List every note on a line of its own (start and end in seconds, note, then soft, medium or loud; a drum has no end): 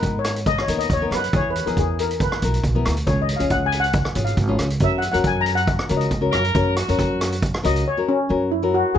0.00 0.54 G#2 medium
0.00 0.39 B3 medium
0.00 0.39 D#4 medium
0.00 0.39 A#4 medium
0.00 0.16 B4 medium
0.00 kick medium
0.00 closed hi-hat medium
0.19 0.48 C#5 medium
0.24 cross-stick medium
0.24 closed hi-hat medium
0.36 closed hi-hat medium
0.46 0.60 D#5 loud
0.46 kick loud
0.46 closed hi-hat medium
0.58 0.75 C#5 medium
0.58 cross-stick medium
0.68 0.85 D#2 medium
0.68 0.88 B3 medium
0.68 0.88 D#4 medium
0.68 0.88 A#4 medium
0.68 closed hi-hat medium
0.79 0.92 D#5 medium
0.79 closed hi-hat medium
0.90 1.07 D#2 medium
0.90 1.12 C#5 medium
0.90 kick medium
0.90 closed hi-hat medium
1.02 1.21 B3 medium
1.02 1.21 D#4 medium
1.02 1.21 A#4 medium
1.11 1.28 F#2 medium
1.11 1.24 B4 medium
1.11 cross-stick medium
1.11 closed hi-hat medium
1.24 closed hi-hat medium
1.33 1.59 E2 loud
1.33 1.53 B3 medium
1.33 1.53 E4 medium
1.33 1.53 G#4 medium
1.33 1.50 C#5 loud
1.33 kick loud
1.33 closed hi-hat medium
1.50 1.63 B4 medium
1.56 closed hi-hat medium
1.66 1.75 E2 medium
1.66 2.12 B3 medium
1.66 2.13 E4 medium
1.66 2.12 G#4 medium
1.66 1.72 A#4 medium
1.66 closed hi-hat medium
1.77 2.28 E2 medium
1.77 2.01 G#4 medium
1.77 kick medium
1.77 closed hi-hat medium
1.99 2.22 A#4 medium
1.99 closed hi-hat medium
2.11 closed hi-hat medium
2.20 2.83 B4 medium
2.20 kick loud
2.20 closed hi-hat medium
2.32 cross-stick medium
2.42 2.59 B1 medium
2.42 2.62 B3 medium
2.42 2.63 E4 medium
2.42 2.63 A#4 medium
2.42 closed hi-hat medium
2.54 closed hi-hat medium
2.64 2.81 B1 medium
2.64 kick medium
2.64 closed hi-hat medium
2.75 2.95 B3 medium
2.75 2.95 E4 medium
2.75 2.95 A#4 loud
2.85 3.03 D2 medium
2.85 cross-stick medium
2.85 closed hi-hat medium
2.97 closed hi-hat medium
3.07 3.33 C#2 loud
3.07 3.27 C#4 medium
3.07 3.27 F4 medium
3.07 3.27 G#4 medium
3.07 3.21 C#5 medium
3.07 kick loud
3.07 closed hi-hat medium
3.22 3.35 D#5 medium
3.29 closed hi-hat medium
3.36 3.86 C#4 medium
3.36 3.86 F4 medium
3.36 3.86 G#4 medium
3.36 3.51 F5 medium
3.36 closed hi-hat medium
3.41 3.49 C#2 medium
3.50 4.02 C#2 medium
3.50 3.66 F#5 loud
3.50 kick medium
3.50 closed hi-hat medium
3.66 3.81 G#5 loud
3.72 closed hi-hat medium
3.80 4.25 F#5 medium
3.80 closed hi-hat medium
3.93 kick loud
3.93 closed hi-hat medium
4.05 cross-stick medium
4.15 4.33 G#1 medium
4.15 4.35 C#4 medium
4.15 4.36 F4 medium
4.15 4.36 G#4 medium
4.15 closed hi-hat medium
4.25 4.44 F5 medium
4.25 closed hi-hat medium
4.37 4.55 G#1 loud
4.37 kick medium
4.37 closed hi-hat medium
4.48 4.68 C#4 medium
4.48 4.68 F4 medium
4.48 4.69 G#4 medium
4.59 4.77 C#2 medium
4.59 cross-stick medium
4.59 closed hi-hat medium
4.70 closed hi-hat medium
4.80 5.07 F#2 medium
4.80 5.01 C#4 medium
4.80 5.01 F#4 medium
4.80 5.01 A#4 medium
4.80 kick loud
4.80 closed hi-hat medium
4.84 4.98 E5 medium
4.98 5.11 F#5 medium
4.98 closed hi-hat medium
5.12 5.23 F#2 medium
5.12 5.59 C#4 medium
5.12 5.60 F#4 medium
5.12 5.59 A#4 medium
5.12 5.26 F#5 medium
5.12 closed hi-hat medium
5.24 5.75 F#2 medium
5.24 5.41 G#5 medium
5.24 kick medium
5.24 closed hi-hat medium
5.41 5.54 A#5 loud
5.46 closed hi-hat medium
5.55 6.00 F#5 loud
5.55 closed hi-hat medium
5.67 kick loud
5.67 closed hi-hat medium
5.79 cross-stick medium
5.89 6.08 C#2 loud
5.89 6.10 C#4 medium
5.89 6.10 F#4 medium
5.89 6.10 A#4 medium
5.89 closed hi-hat medium
5.97 6.17 D#5 medium
5.97 closed hi-hat medium
6.11 6.29 C#2 medium
6.11 kick medium
6.11 closed hi-hat medium
6.21 6.42 C#4 medium
6.21 6.42 F#4 medium
6.21 6.42 A#4 medium
6.31 6.51 F#2 medium
6.31 6.73 A#4 loud
6.31 cross-stick medium
6.31 closed hi-hat medium
6.44 closed hi-hat medium
6.55 6.81 F#2 loud
6.55 6.75 C#4 medium
6.55 6.75 F#4 medium
6.55 6.75 A#4 loud
6.55 kick medium
6.55 closed hi-hat medium
6.76 7.50 F#4 medium
6.76 cross-stick medium
6.76 closed hi-hat medium
6.88 6.97 F#2 medium
6.88 7.34 C#4 medium
6.88 7.34 F#4 medium
6.88 7.35 A#4 medium
6.88 closed hi-hat medium
6.99 7.50 F#2 medium
6.99 kick medium
6.99 closed hi-hat medium
7.21 cross-stick medium
7.21 closed hi-hat medium
7.32 closed hi-hat medium
7.42 kick loud
7.42 closed hi-hat medium
7.54 cross-stick medium
7.63 7.82 C#2 loud
7.63 7.84 C#4 medium
7.63 7.84 F#4 medium
7.63 7.84 A#4 medium
7.63 7.85 D#5 loud
7.63 closed hi-hat medium
7.76 closed hi-hat medium
7.88 8.27 C#5 medium
7.97 8.17 C#4 medium
7.97 8.17 F#4 medium
7.97 8.17 A#4 medium
8.09 8.53 C#4 medium
8.29 8.81 F#2 medium
8.29 8.49 C#4 medium
8.29 8.49 F#4 medium
8.29 8.50 A#4 medium
8.51 8.74 E4 medium
8.62 8.98 C#4 medium
8.62 8.98 F#4 medium
8.62 8.98 A#4 medium
8.74 8.96 F#4 loud
8.95 8.98 F#2 medium
8.95 8.98 G#4 loud